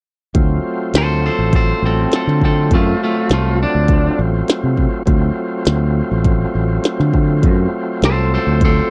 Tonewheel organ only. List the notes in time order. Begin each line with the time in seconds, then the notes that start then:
0.34 F#3 A3 C4 F4
5.06 F#3 A3 C4 F4